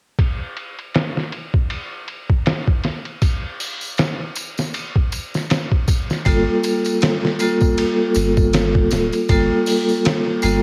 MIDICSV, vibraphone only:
0, 0, Header, 1, 2, 480
1, 0, Start_track
1, 0, Key_signature, -2, "minor"
1, 0, Tempo, 759494
1, 115, Time_signature, 4, 2, 24, 8
1, 6716, End_track
2, 0, Start_track
2, 0, Title_t, "Vibraphone"
2, 0, Program_c, 0, 11
2, 3951, Note_on_c, 0, 55, 71
2, 3958, Note_on_c, 0, 58, 63
2, 3964, Note_on_c, 0, 65, 66
2, 3970, Note_on_c, 0, 69, 81
2, 4091, Control_c, 0, 64, 127
2, 4648, Note_off_c, 0, 55, 0
2, 4652, Note_off_c, 0, 58, 0
2, 4655, Note_off_c, 0, 65, 0
2, 4657, Note_off_c, 0, 69, 0
2, 4674, Note_on_c, 0, 55, 68
2, 4681, Note_on_c, 0, 58, 67
2, 4687, Note_on_c, 0, 65, 68
2, 4692, Note_on_c, 0, 69, 85
2, 5850, Note_off_c, 0, 55, 0
2, 5853, Note_off_c, 0, 58, 0
2, 5856, Note_off_c, 0, 65, 0
2, 5859, Note_off_c, 0, 69, 0
2, 5872, Note_on_c, 0, 55, 72
2, 5877, Note_on_c, 0, 58, 63
2, 5884, Note_on_c, 0, 65, 64
2, 5887, Note_on_c, 0, 69, 78
2, 6569, Note_off_c, 0, 55, 0
2, 6571, Note_off_c, 0, 58, 0
2, 6575, Note_off_c, 0, 65, 0
2, 6576, Note_off_c, 0, 69, 0
2, 6590, Note_on_c, 0, 55, 74
2, 6595, Note_on_c, 0, 58, 64
2, 6601, Note_on_c, 0, 65, 65
2, 6607, Note_on_c, 0, 69, 81
2, 6716, Note_off_c, 0, 55, 0
2, 6716, Note_off_c, 0, 58, 0
2, 6716, Note_off_c, 0, 65, 0
2, 6716, Note_off_c, 0, 69, 0
2, 6716, End_track
0, 0, End_of_file